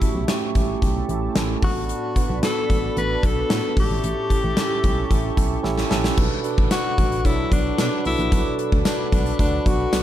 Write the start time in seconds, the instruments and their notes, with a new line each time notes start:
Already playing: tine electric piano A2 A3 C#4 E4 G4, alto saxophone E4, analog synth pad G4 E5 A5 C#6
0.01 tine electric piano A3 C#4 E4 F#4, kick, closed hi-hat
0.15 fm bass B1
0.28 tine electric piano A3 C#4 E4 G4, snare, closed hi-hat
0.55 fm bass A1, tine electric piano A3 C#4 E4 G4, kick, closed hi-hat
0.82 fm bass B1, tine electric piano A3 C#4 E4 G4, kick, closed hi-hat
1.09 fm bass A1, tine electric piano A3 C#4 E4 G4, closed hi-hat
1.36 fm bass A1, tine electric piano A3 C#4 E4 A4, snare, closed hi-hat
1.62 fm bass A1, tine electric piano A2 D4, analog synth pad F#4 D5 B5, alto saxophone F#4, kick, open hi-hat
1.89 closed hi-hat
2.16 tine electric piano B3 D4 F#4 B4, kick, closed hi-hat
2.30 fm bass B1
2.42 tine electric piano B3 D4 F#4 A4, alto saxophone A4, snare, closed hi-hat
2.70 fm bass A1, tine electric piano B3 D4 F#4 A4, kick, closed hi-hat
2.96 fm bass A1, tine electric piano B3 D4 F#4 B4, alto saxophone B4, closed hi-hat
3.23 fm bass B1, tine electric piano B3 D4 F#4 A4, alto saxophone A4, kick, closed hi-hat
3.50 fm bass A2, tine electric piano B3 D4 F#4 B4, snare, closed hi-hat
3.76 fm bass A1, tine electric piano A2 C#4 E4 G4 A4, analog synth pad G4 E5 C#6, alto saxophone G4, kick, open hi-hat
3.90 fm bass G#1
4.04 fm bass A1, closed hi-hat
4.29 tine electric piano C#4 E4 G4 A4, kick, closed hi-hat
4.44 fm bass A1
4.56 tine electric piano C#4 E4 G4 A4, snare, closed hi-hat
4.83 fm bass B1, tine electric piano C#4 E4 G4 A4, kick, closed hi-hat
5.10 fm bass A1, tine electric piano C#4 E4 G4 A4, kick, closed hi-hat
5.36 fm bass B1, tine electric piano C#4 E4 G4 A4, kick, closed hi-hat
5.63 fm bass A1, tine electric piano C#4 E4 G4 A4, snare
5.78 snare
5.90 fm bass A#1, tine electric piano C#4 E4 G4 A4, snare
6.04 snare
6.17 fm bass B1, tine electric piano B2 D4 F#4 A4 B4, analog synth pad A4 F#5 B5 D6, kick, crash
6.44 tine electric piano D4 F#4 A4 B4, closed hi-hat
6.58 fm bass A1, kick
6.71 tine electric piano D4 F#4 D5, alto saxophone F#4, snare, closed hi-hat, tambourine
6.98 fm bass A1, tine electric piano D4 F#4 A4 B4, kick, closed hi-hat
7.12 closed hi-hat
7.25 fm bass B1, analog polysynth F#3 D4 A4, tine electric piano D4 F#4 A4 C#5, alto saxophone E4, kick, closed hi-hat
7.52 fm bass B1, tine electric piano D4 F#4 A4 B4, alto saxophone D4, kick, closed hi-hat
7.78 fm bass B2, tine electric piano D4 F#4 A4 B4, alto saxophone D4, snare, closed hi-hat, tambourine
8.05 fm bass B1, tine electric piano D4 F#4 A4 D5, alto saxophone E4, open hi-hat
8.19 fm bass A#1, closed hi-hat
8.32 fm bass B1, tine electric piano B2 D4 F#4 A4 B4, kick, closed hi-hat
8.58 tine electric piano D4 F#4 A4 B4, closed hi-hat
8.72 fm bass D2, kick
8.85 tine electric piano D4 F#4 A4 B4, alto saxophone D4, snare, closed hi-hat, tambourine
9.12 fm bass B1, tine electric piano D4 F#4 A4 B4, alto saxophone D4, kick, closed hi-hat
9.26 closed hi-hat
9.39 fm bass D2, tine electric piano D4 F#4 A4 B4, alto saxophone D4, kick, closed hi-hat
9.66 fm bass B1, tine electric piano D4 F#4 A4 D5, alto saxophone F#4, kick, closed hi-hat
9.92 fm bass B1, tine electric piano D4 F#4 A4 B4, snare, closed hi-hat, tambourine